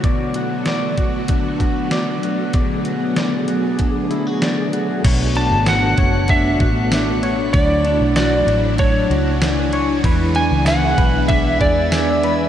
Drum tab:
CC |--------|--------|x-------|--------|
RD |--------|--------|xxxxxxxx|xxxxxxxx|
HH |xxxxxxxx|xxxxxxxx|--------|--------|
TB |--------|--------|--x---x-|--x---x-|
SD |--o---o-|--o---o-|--o---o-|--o---o-|
BD |o--ooo--|o---o---|o--ooo--|o---o---|

CC |--------|
RD |xxxxxxxx|
HH |--------|
TB |--x---x-|
SD |--o---o-|
BD |o--ooo--|